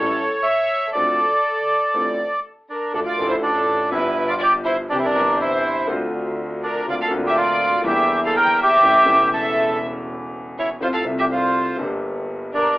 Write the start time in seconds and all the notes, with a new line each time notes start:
Already playing: C#4 A4 C#5
0.00 A1 A2 G3 E4 A4
0.43 C#5 E5
0.93 D2 D3 F3 C4 D4 A4 D5
1.94 A1 A2 F3 C4 D4 A4
2.70 D4 A#4
2.93 D2 D3 F3 A3 D4 A4
3.05 F4 D5
3.17 A1 A2 F3 A3 D4 A4
3.29 E4 C5
3.43 D4 A4
3.91 G1 G2 F3 B3 D4 E4 B4
3.95 G4
4.27 F4 D5
4.39 G4 D5
4.65 E4 C5
4.89 C2 C3 E3 C4 D4 G4
4.98 E4 C5
5.04 D4 A#4
5.14 G1 G2 E3 C4 D4
5.18 G4
5.41 E4 C5
5.87 D2 D3 A3 C4
5.91 F4
6.63 D4 A#4
6.86 D2 D3 A#3 C4 F4 D5
7.01 A4 F5
7.10 D2 D3 A#3 C4 F4
7.27 G4 E5
7.37 F4 D5
7.82 E2 D3 E3 G3 A#3
7.86 E4 G4 E5
8.25 A4 F5
8.36 A#4 G5
8.63 G4 E5
8.82 A1 A2 C#3 E3 A3 E4
9.04 E1 E2 C#3 E3 A3
9.08 E1 E4
9.34 A4 E5
10.59 E4 C#5
10.80 F2 C3 F3 A3 E4 F4 C5
10.93 A4 F5
11.02 C2 C3 F3 A3
11.07 E5
11.19 G4 E5
11.32 F4 C5
11.77 G1 G2 D3 G3 A#3
11.81 G4
12.54 D4 A#4